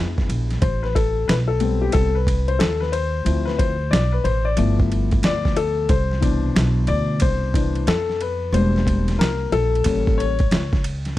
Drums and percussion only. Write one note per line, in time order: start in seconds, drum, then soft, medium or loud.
0.18 kick medium
0.18 snare soft
0.30 ride medium
0.51 snare soft
0.51 ride soft
0.62 kick loud
0.62 ride medium
0.84 snare soft
0.96 kick medium
0.96 ride medium
1.29 snare loud
1.29 hi-hat pedal soft
1.29 ride medium
1.60 ride medium
1.92 kick medium
1.92 ride medium
2.27 kick medium
2.27 ride medium
2.48 ride soft
2.60 snare loud
2.60 hi-hat pedal medium
2.60 ride medium
2.82 snare soft
2.93 ride medium
3.26 ride medium
3.48 snare soft
3.59 kick medium
3.59 ride medium
3.93 snare loud
3.93 hi-hat pedal soft
3.93 ride medium
4.25 ride medium
4.57 ride medium
4.80 kick medium
4.92 ride medium
5.11 kick loud
5.11 ride soft
5.23 snare loud
5.23 hi-hat pedal medium
5.23 ride medium
5.45 kick medium
5.45 snare soft
5.56 ride medium
5.89 kick loud
5.89 ride medium
6.11 snare soft
6.22 kick medium
6.22 ride medium
6.56 snare loud
6.56 hi-hat pedal medium
6.56 ride medium
6.87 ride medium
7.20 kick loud
7.20 ride medium
7.54 kick medium
7.54 ride medium
7.75 ride soft
7.87 snare loud
7.87 hi-hat pedal soft
7.87 ride medium
8.10 snare soft
8.21 ride medium
8.54 ride medium
8.76 snare soft
8.87 kick medium
8.87 ride medium
9.08 snare soft
9.08 ride soft
9.21 snare loud
9.21 hi-hat pedal medium
9.21 ride medium
9.52 ride medium
9.75 ride soft
9.84 kick medium
9.84 ride medium
10.07 kick loud
10.20 ride medium
10.39 kick loud
10.39 ride soft
10.51 snare loud
10.51 hi-hat pedal medium
10.51 ride medium
10.73 kick loud
10.73 snare soft
10.84 ride medium
11.05 snare soft
11.05 ride soft